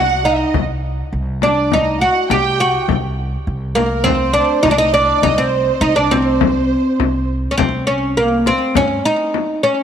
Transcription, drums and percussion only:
0.54 frame drum medium
1.42 frame drum medium
1.72 frame drum medium
2.30 frame drum medium
2.89 frame drum medium
3.77 frame drum medium
4.06 frame drum medium
4.65 frame drum medium
5.23 frame drum medium
6.12 frame drum medium
6.41 frame drum medium
7.00 frame drum medium
7.59 frame drum medium
8.46 frame drum medium
8.75 frame drum medium
9.34 frame drum medium

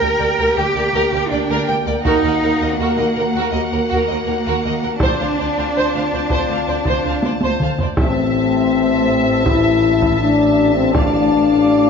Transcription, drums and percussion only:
2.05 taiko medium
5.00 taiko medium
6.30 taiko medium
6.85 taiko medium
7.23 taiko high medium
7.41 taiko high medium
7.60 taiko mid medium
7.78 taiko low medium
7.97 taiko medium
9.46 taiko medium
10.02 taiko medium
10.95 taiko medium

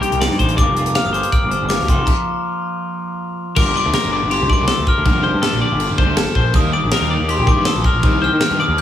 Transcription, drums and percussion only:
0.03 closed hi-hat medium
0.12 closed hi-hat medium
0.21 snare loud
0.21 closed hi-hat medium
0.31 snare soft
0.39 kick medium
0.39 closed hi-hat medium
0.49 closed hi-hat medium
0.58 kick loud
0.58 closed hi-hat medium
0.77 closed hi-hat medium
0.86 closed hi-hat medium
0.95 snare loud
0.95 closed hi-hat medium
1.14 closed hi-hat medium
1.23 closed hi-hat medium
1.32 kick loud
1.32 closed hi-hat medium
1.51 closed hi-hat medium
1.70 snare loud
1.70 closed hi-hat medium
1.80 snare soft
1.88 kick loud
1.88 closed hi-hat medium
2.07 kick loud
2.07 crash medium
3.56 kick loud
3.56 crash loud
3.56 crash medium
3.93 snare loud
3.93 crash medium
4.31 crash medium
4.50 kick medium
4.67 snare loud
4.67 crash medium
4.87 kick medium
5.06 kick loud
5.06 crash medium
5.43 snare loud
5.43 crash medium
5.80 crash medium
5.98 kick medium
6.17 snare loud
6.17 crash medium
6.35 kick medium
6.54 kick loud
6.54 crash medium
6.91 snare loud
6.91 crash medium
7.29 crash medium
7.47 kick loud
7.65 snare loud
7.65 crash medium
7.84 kick medium
8.03 kick loud
8.03 crash medium
8.41 snare loud
8.41 crash medium
8.78 crash medium

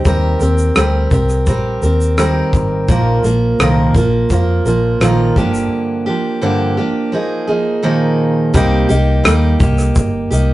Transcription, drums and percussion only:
0.05 kick loud
0.05 shaker medium
0.40 shaker soft
0.58 shaker soft
0.76 cross-stick loud
0.76 shaker medium
1.11 kick medium
1.11 shaker medium
1.29 cross-stick soft
1.29 shaker soft
1.47 kick medium
1.47 shaker medium
1.83 shaker soft
2.01 shaker soft
2.18 cross-stick medium
2.18 shaker medium
2.53 kick medium
2.53 shaker soft
2.89 kick loud
2.89 shaker medium
3.24 shaker soft
3.60 cross-stick loud
3.60 shaker medium
3.95 kick medium
3.95 shaker medium
4.30 kick medium
4.30 shaker medium
4.66 shaker soft
5.01 cross-stick medium
5.01 shaker medium
5.36 kick medium
5.36 shaker soft
5.54 shaker soft
8.54 kick loud
8.54 shaker medium
8.90 shaker soft
9.25 cross-stick loud
9.25 shaker medium
9.60 kick loud
9.60 shaker medium
9.78 cross-stick soft
9.78 shaker soft
9.96 kick medium
9.96 shaker medium
10.32 shaker medium

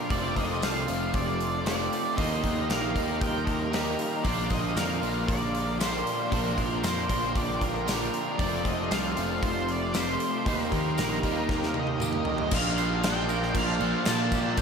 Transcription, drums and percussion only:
0.10 kick loud
0.10 open hi-hat medium
0.36 kick medium
0.36 open hi-hat soft
0.62 snare loud
0.62 open hi-hat medium
0.88 open hi-hat medium
1.14 kick loud
1.14 open hi-hat medium
1.40 open hi-hat medium
1.66 snare loud
1.66 open hi-hat medium
1.93 open hi-hat medium
2.18 kick loud
2.18 open hi-hat medium
2.43 kick medium
2.43 open hi-hat medium
2.70 snare loud
2.70 open hi-hat medium
2.96 kick medium
2.96 open hi-hat medium
3.21 kick loud
3.21 open hi-hat medium
3.47 kick medium
3.47 open hi-hat soft
3.73 snare loud
3.73 open hi-hat medium
3.99 open hi-hat medium
4.25 kick loud
4.25 open hi-hat medium
4.50 kick medium
4.50 open hi-hat medium
4.77 snare loud
4.77 open hi-hat medium
4.77 tambourine loud
5.03 open hi-hat medium
5.28 kick loud
5.28 open hi-hat medium
5.55 open hi-hat medium
5.80 snare loud
5.80 open hi-hat medium
5.80 tambourine loud
6.07 open hi-hat medium
6.32 kick loud
6.32 open hi-hat medium
6.58 kick medium
6.58 open hi-hat medium
6.83 snare loud
6.83 open hi-hat medium
6.83 tambourine loud
7.09 kick medium
7.09 open hi-hat medium
7.36 kick loud
7.36 open hi-hat medium
7.61 kick medium
7.61 open hi-hat medium
7.88 snare loud
7.88 open hi-hat medium
7.88 tambourine loud
8.14 open hi-hat medium
8.39 kick loud
8.39 open hi-hat medium
8.65 kick medium
8.65 open hi-hat medium
8.91 snare loud
8.91 open hi-hat medium
8.91 tambourine loud
9.17 open hi-hat medium
9.43 kick loud
9.43 open hi-hat medium
9.68 open hi-hat medium
9.94 snare loud
9.94 open hi-hat medium
9.94 tambourine loud
10.20 open hi-hat medium
10.46 kick loud
10.46 open hi-hat medium
10.72 kick medium
10.72 open hi-hat medium
10.98 snare loud
10.98 open hi-hat medium
10.98 tambourine loud
11.23 kick medium
11.23 open hi-hat medium
11.49 kick loud
11.49 snare medium
11.63 snare medium
11.74 high tom medium
11.87 high tom medium
12.00 mid tom medium
12.00 tambourine loud
12.13 mid tom medium
12.25 floor tom medium
12.38 floor tom medium
12.51 kick loud
12.51 crash loud
12.51 tambourine medium
12.51 crash medium
12.78 tambourine medium
12.78 crash medium
13.03 snare loud
13.03 tambourine medium
13.03 crash medium
13.29 tambourine medium
13.29 crash medium
13.43 snare soft
13.55 kick medium
13.55 tambourine soft
13.55 crash medium
13.80 crash medium
14.05 snare loud
14.05 tambourine loud
14.05 crash medium
14.32 kick medium
14.32 tambourine medium
14.32 crash medium
14.57 kick loud
14.57 tambourine medium
14.57 crash medium

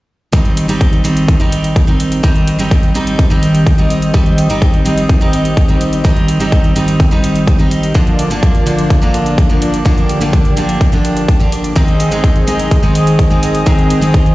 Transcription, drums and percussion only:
0.33 kick loud
0.33 closed hi-hat medium
0.45 closed hi-hat soft
0.57 closed hi-hat medium
0.69 closed hi-hat medium
0.81 kick loud
0.81 closed hi-hat soft
0.93 closed hi-hat soft
1.05 closed hi-hat medium
1.17 closed hi-hat medium
1.28 kick loud
1.28 closed hi-hat soft
1.40 closed hi-hat soft
1.52 closed hi-hat medium
1.64 closed hi-hat soft
1.76 kick loud
1.76 closed hi-hat medium
1.88 closed hi-hat soft
2.00 closed hi-hat medium
2.12 closed hi-hat medium
2.24 kick loud
2.24 closed hi-hat medium
2.36 closed hi-hat soft
2.47 closed hi-hat medium
2.59 closed hi-hat medium
2.71 kick loud
2.71 closed hi-hat soft
2.83 closed hi-hat soft
2.95 closed hi-hat medium
3.07 closed hi-hat soft
3.19 kick loud
3.19 closed hi-hat soft
3.31 closed hi-hat soft
3.43 closed hi-hat medium
3.55 closed hi-hat soft
3.67 kick loud
3.67 closed hi-hat medium
3.78 closed hi-hat soft
3.90 closed hi-hat medium
4.02 closed hi-hat soft
4.14 kick loud
4.14 closed hi-hat soft
4.26 closed hi-hat soft
4.38 closed hi-hat medium
4.50 closed hi-hat soft
4.62 kick loud
4.62 closed hi-hat soft
4.74 closed hi-hat soft
4.86 closed hi-hat medium
4.98 closed hi-hat soft
5.09 kick loud
5.09 closed hi-hat soft
5.21 closed hi-hat soft
5.33 closed hi-hat medium
5.45 closed hi-hat soft
5.57 kick loud
5.57 closed hi-hat soft
5.69 closed hi-hat soft
5.81 closed hi-hat medium
5.93 closed hi-hat soft
6.05 kick loud
6.05 closed hi-hat soft
6.17 closed hi-hat soft
6.28 closed hi-hat medium
6.40 closed hi-hat soft
6.52 kick loud
6.52 closed hi-hat soft
6.64 closed hi-hat soft
6.76 closed hi-hat medium
6.88 closed hi-hat soft
7.00 kick loud
7.00 closed hi-hat soft
7.12 closed hi-hat soft
7.24 closed hi-hat medium
7.36 closed hi-hat soft
7.47 kick loud
7.47 closed hi-hat soft
7.59 closed hi-hat soft
7.71 closed hi-hat medium
7.83 closed hi-hat soft
7.95 kick loud
7.95 closed hi-hat soft
8.07 closed hi-hat soft
8.19 closed hi-hat medium
8.31 closed hi-hat soft
8.43 kick loud
8.43 closed hi-hat soft
8.55 closed hi-hat soft
8.67 closed hi-hat medium
8.79 closed hi-hat soft
8.90 kick loud
8.90 closed hi-hat soft
9.02 closed hi-hat soft
9.14 closed hi-hat medium
9.26 closed hi-hat soft
9.38 kick loud
9.38 closed hi-hat soft
9.50 closed hi-hat soft
9.62 closed hi-hat medium
9.74 closed hi-hat soft
9.86 kick loud
9.86 closed hi-hat soft
9.98 closed hi-hat soft
10.09 closed hi-hat medium
10.21 closed hi-hat medium
10.33 kick loud
10.33 closed hi-hat soft
10.45 closed hi-hat soft
10.57 closed hi-hat medium
10.69 closed hi-hat medium
10.81 kick loud
10.81 closed hi-hat soft
10.93 closed hi-hat soft
11.05 closed hi-hat medium
11.17 closed hi-hat soft
11.28 kick loud
11.28 closed hi-hat soft
11.40 closed hi-hat soft
11.52 closed hi-hat medium
11.64 closed hi-hat medium
11.76 kick loud
11.76 closed hi-hat medium
11.88 closed hi-hat soft
12.00 closed hi-hat medium
12.12 closed hi-hat medium
12.24 kick loud
12.24 closed hi-hat medium
12.36 closed hi-hat soft
12.48 closed hi-hat medium
12.59 closed hi-hat medium
12.71 kick loud
12.71 closed hi-hat medium
12.83 closed hi-hat soft
12.95 closed hi-hat medium
13.07 closed hi-hat soft
13.19 kick loud
13.19 closed hi-hat medium
13.31 closed hi-hat soft
13.43 closed hi-hat medium
13.55 closed hi-hat medium
13.67 kick loud
13.67 closed hi-hat medium
13.79 closed hi-hat soft
13.90 closed hi-hat medium
14.02 closed hi-hat medium
14.14 kick loud
14.14 closed hi-hat soft
14.26 closed hi-hat soft

